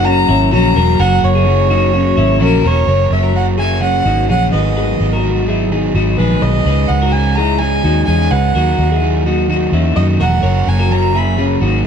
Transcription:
Already playing: F#1 F#3 A#3 C#4
0.05 C#4 F#4 A#5
0.29 G#1 C#4 E4
0.52 A#1 C#3 F#3 A#3 C#4 F#4 A#5
0.75 E1 F#3 A#3 C#4 F#4 A#4
0.99 F#1 F#2 C#3 F#3 A#3 C#4 F#4 A#4 F#5
1.23 F#1 C#5
1.35 E4 G#4
1.45 C#3 F#3 A#3 C#4
1.69 F#3 A#3 C#4 D#4 F#4
1.93 C#4 F#4
2.17 G#1 C#4 E4
2.39 A#1 C#3 F#3 A#3 C#4 F#4 A#4
2.63 E1 F#3 A#3 C#4 F#4 A#4 C#5
2.87 F#1 F#2 C#3 F#3 A#3 C#4 A#4 C#5
3.10 F#1 F#3 A#3 C#4 E5
3.23 F#4 A#4
3.34 F#2 C#3 F#3 A#3 C#4 F#5
3.57 F#3 A#3 C#4 E4 G#4 G#5
3.80 C#3 F#3 A#3 C#4 G#4 F#5
4.05 G#1 F#3 A#3 C#4 D#4 F#4
4.28 A#1 F#2 C#3 F#3 A#3 C#4 G#4 F#5
4.52 G#1 G#2 D#3 F#3 B3 D#4 G#4 B4 D#5
4.77 G#4 B4
4.99 G#1 F#3 B3 D#4
5.13 F#4 A#4
5.24 G#2 D#3 F#3 B3 D#4
5.47 F#3 B3 D#4 E4 G#4
5.71 D#3 F#3 B3 D#4 G#4
5.94 G#1 F#3 B3 D#4 F#4
6.18 A#1 G#2 D#3 F#3 B3 D#4 G#4 B4
6.42 B1 G#4 B4 D#5
6.65 C#2 C#3 G#3 C#4 D#4 G#4 B4
6.88 C#2 G#3 C#4 D#4 F#5
7.02 F#4 A#4
7.12 C#3 G#3 C#4 D#4 G#5
7.36 C#4 D#4 E4 G#4 A#5
7.40 G#3
7.59 C#3 G#3 D#4 G#4 G#5
7.63 C#4 D#4
7.84 D#2 G#3 C#4 D#4 F#4
8.06 E2 C#3 G#3 C#4 D#4 G#4 G#5
8.10 D#4
8.31 C#2 G#4 B4 F#5
8.55 D#2 D#3 F#3 A#3 D#4 F#4 A#4
8.78 D#2 F#3 A#3 D#4
8.91 E4 G#4
9.02 D#3 F#3 A#3 D#4
9.25 F#3 A#3 D#4 F#4
9.49 D#3 F#3 A#3 D#4 F#4
9.72 E2 F#3 A#3 C#4 D#4 E4
9.96 F#2 D#3 F#3 A#3 D#4 F#4 D#5
10.20 E1 F#4 A#4 F#5
10.43 F#1 F#2 C#3 F#3 A#3 C#4 A#4 C#5
10.66 F#1 F#3 A#3 C#4 G#5
10.79 F#4 A#4
10.90 F#2 C#3 F#3 A#3 C#4 A#5
11.14 F#3 A#3 C#4 E4 G#4 B5
11.37 C#3 F#3 A#3 C#4 G#4
11.61 G#1 F#3 A#3 C#4 D#4 F#4

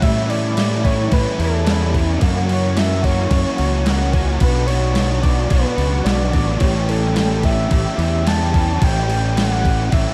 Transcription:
0.02 A2 E3 G3 C#4 E4 E5, kick, crash
0.28 G3 C#4 E4 D5, crash
0.57 E3 G3 C#4 E4, snare, crash
0.84 G3 C#4 E4 C#5, kick, crash
1.11 A2 E3 G3 C#4 E4 B4, kick, crash
1.39 E2 G3 C#4 E4 A4, crash
1.65 E3 G3 C#4 E4, snare, crash
1.93 G3 C#4 E4, kick, crash
2.19 F#2 C#3 E3 A#3 C#4 F#4, kick, crash
2.46 A#3 C#4 F#4, crash
2.51 E3 C#5
2.74 E3 A#3 C#4, snare, crash
2.78 F#4 E5
3.02 E3 A#3 C#4 F#4 C#5, kick, crash
3.29 F#2 C#3 E3 A#3 C#4 F#4, kick, crash
3.57 C#2 E3 A#3 C#4 F#4, crash
3.85 E3 A#3 C#4 F#4, snare, crash
4.12 E3 A#3 C#4 F#4, kick, crash
4.39 B1 B2 F#3 B3 D4 F#4 B4, kick, crash
4.67 B3 D4 F#4 C#5, crash
4.93 F#3 B3 D4 F#4, snare, crash
5.21 B3 D4 F#4 D5, kick, crash
5.49 B1 B2 F#3 B3 D4 F#4 B4, kick, crash
5.75 C#2 B3 D4 F#4, crash
6.03 B1 F#3 B3 D4 F#4 D5, snare, crash
6.31 A1 D4 F#4, kick, crash
6.35 B3
6.59 A1 A2 E3 G3 C#4 G4 C#5, kick, crash
6.86 G3 C#4 G4 A4, crash
7.14 E3 G3 C#4 G4, snare, crash
7.41 G3 C#4 G4 E5, kick, crash
7.70 A1 A2 E3 G3 C#4 G4 E5, kick, crash
7.97 E2 C#4 G4, crash
8.01 G3
8.25 E3 G3 C#4 G4 A5, snare, crash
8.53 G3 C#4 G4, kick, crash
8.80 A1 A2 E3 G3 C#4 G4 G5, kick, crash
9.08 G3 C#4 G4, crash
9.36 E3 G3 C#4 G4 F#5, snare, crash
9.63 G3 C#4 G4, kick, crash
9.90 A1 A2 E3 G3 C#4 G4 E5, kick, crash

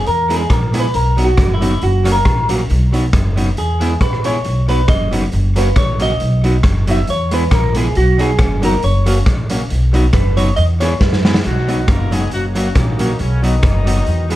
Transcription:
0.06 E2 A#4, closed hi-hat
0.29 G#3 B3 E4 G#4, closed hi-hat
0.36 G#4
0.50 A#1 A#4, kick, cross-stick, closed hi-hat
0.73 G#3 B3 E4 G#4, closed hi-hat
0.80 B4
0.94 B1 A#4, closed hi-hat
1.17 F#3 B3 D#4 F#4, closed hi-hat
1.25 F#4
1.37 F#1, kick, cross-stick, closed hi-hat
1.54 E4
1.61 F#3 B3 D#4 F#4, closed hi-hat
1.81 F#1 F#4, closed hi-hat
2.04 F#3 A#3 C#4 F#4, cross-stick, closed hi-hat
2.12 A#4
2.25 A#1, kick, cross-stick, closed hi-hat
2.49 F#3 A#3 C#4 F#4, closed hi-hat
2.70 B1, closed hi-hat
2.93 F#3 B3 D#4 F#4, closed hi-hat
3.13 F#1, kick, cross-stick, closed hi-hat
3.36 F#3 B3 D#4 F#4, closed hi-hat
3.57 E2 G#4, closed hi-hat
3.80 G#3 B3 E4 G#4, closed hi-hat
4.01 A#1 B4, kick, cross-stick, closed hi-hat
4.13 cross-stick
4.24 G#3 B3 E4 G#4 C#5, closed hi-hat
4.45 B1, closed hi-hat
4.68 F#3 B3 D#4 F#4 B4, closed hi-hat
4.88 F#1 D#5, kick, cross-stick, closed hi-hat
5.11 F#3 B3 D#4 F#4, closed hi-hat
5.32 F#1, closed hi-hat
5.56 F#3 A#3 C#4 F#4 B4, closed hi-hat
5.76 A#1 C#5, kick, cross-stick, closed hi-hat
5.99 F#3 A#3 C#4 F#4 D#5, closed hi-hat
6.20 B1, closed hi-hat
6.44 F#3 B3 D#4 F#4, closed hi-hat
6.63 F#1, kick, cross-stick, closed hi-hat
6.87 F#3 B3 D#4 F#4 E5, closed hi-hat
7.07 E2 C#5, closed hi-hat
7.31 G#3 B3 E4 G#4 B4, closed hi-hat
7.51 A#1 A#4, kick, cross-stick, closed hi-hat
7.75 G#3 B3 E4 G#4, closed hi-hat
7.95 B1 F#4, closed hi-hat
8.18 F#3 B3 D#4 F#4 G#4, closed hi-hat
8.39 F#1, kick, cross-stick, closed hi-hat
8.62 F#3 B3 D#4 F#4 A#4, closed hi-hat
8.83 F#1 C#5, closed hi-hat
9.06 F#3 A#3 C#4 F#4, closed hi-hat
9.26 A#1, kick, cross-stick, closed hi-hat
9.50 F#3 A#3 C#4 F#4, closed hi-hat
9.70 B1, closed hi-hat
9.93 F#3 B3 D#4 F#4, closed hi-hat
10.13 F#1 B4, kick, cross-stick, closed hi-hat
10.37 F#3 B3 D#4 F#4 C#5, closed hi-hat
10.56 E2 D#5, closed hi-hat
10.80 G#3 B3 E4 G#4 C#5, cross-stick, closed hi-hat
11.01 F#2 B4, kick, snare
11.13 snare
11.25 G#3 B3 E4 G#4, snare
11.34 snare
11.44 B1 F#3 B3 D#4 F#4, closed hi-hat
11.68 F#3 B3 D#4 F#4, closed hi-hat
11.88 F#1 A#3 A#4, kick, cross-stick, closed hi-hat
12.11 F#3 G#3 B3 D#4 F#4 G#4, closed hi-hat
12.31 F#1 F#3 A#3 C#4 F#4, closed hi-hat
12.55 F#3 A#3 C#4 F#4, closed hi-hat
12.75 A#1 D#3 F#3 A#3 D#4, kick, cross-stick, closed hi-hat
12.99 F#3 A#3 C#4 F#4, closed hi-hat
13.19 B1 C#3 F#3 C#4, closed hi-hat
13.42 D#3 F#3 B3 D#4 F#4, closed hi-hat
13.63 F#1, kick, cross-stick, closed hi-hat
13.86 F#3 B3 D#4 F#4, closed hi-hat
14.06 E2, closed hi-hat
14.30 G#3 B3 E4 G#4, closed hi-hat

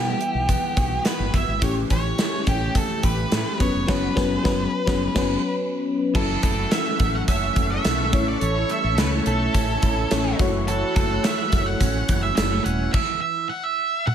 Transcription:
Already playing: B2 E3 G3 B3 E4 F#4 G4 F#5
0.21 E4, closed hi-hat
0.34 B1
0.49 B3, kick, closed hi-hat
0.77 B1 F#4, kick, closed hi-hat
1.05 B3 B4, snare, closed hi-hat
1.19 G1
1.34 G1 E4 E5, kick, closed hi-hat
1.48 G#1
1.61 A1 E3 A3 C#4 G4 C#5, kick, closed hi-hat
1.90 A1 C#4 C#5, kick, closed hi-hat
2.18 A3, snare, closed hi-hat
2.47 A1 C#4 G4, kick, closed hi-hat
2.75 A3 A4, kick, closed hi-hat
3.03 A1 G4 B4, kick, closed hi-hat
3.32 A2 A3, snare, closed hi-hat
3.59 F#1 F#3 B3 C#4 B4 C#5, kick, closed hi-hat
3.74 F1
3.87 F#1 F#3 B3 C#4 F#4 B4, kick, snare, crash
4.15 F#1 F#3 B3 C#4 B4, kick, snare
4.43 F#1 F#3 B3 C#4 B4, kick, snare
4.86 F#1 F#3 B3 C#4 B4, kick, snare
5.14 F#1 F#3 B3 C#4 B4, kick, snare, crash
6.14 F#1 E3 F#3 C#4 E4 A4 E5 F#5 C#6, kick, crash
6.43 F#1 A3 A4, kick, closed hi-hat
6.71 E3 E5, snare, closed hi-hat
6.99 A1 A3, kick, closed hi-hat
7.15 F#5
7.28 F#1 C#4 E5, kick, closed hi-hat
7.56 F#1 E3, kick, closed hi-hat
7.72 E5
7.84 B1 A3, snare, closed hi-hat
8.12 A1 E3 A3 C#4 E4 C#5, kick, closed hi-hat
8.28 D5
8.41 A1 E3 C#5, closed hi-hat
8.69 G3 E5, closed hi-hat
8.84 A1 A3
8.98 C#2 E3 B4, snare, closed hi-hat
9.26 B1 A3 A4, closed hi-hat
9.54 A1 C#4, kick, closed hi-hat
9.82 A1 E3, kick, closed hi-hat
10.11 A1 A3 C#4 E4 C#5, snare, closed hi-hat
10.39 F#1 E3 A3 E4 F#4 C#5 F#5, kick, closed hi-hat
10.68 E3 A4, closed hi-hat
10.96 F#1 A3 A4, kick, closed hi-hat
11.24 E3 E5, snare, closed hi-hat
11.52 F#1 A3, kick, closed hi-hat
11.66 F#5
11.81 A1 C#4, kick, closed hi-hat
12.09 F#1 E3, kick, closed hi-hat
12.23 E5
12.36 F#1 G3 E5, snare, closed hi-hat
12.52 A3
12.64 D#1 C#4 F#5, closed hi-hat
12.93 E5, kick, crash
13.21 E5
13.49 F#5
13.63 E5
14.07 F#5, high tom

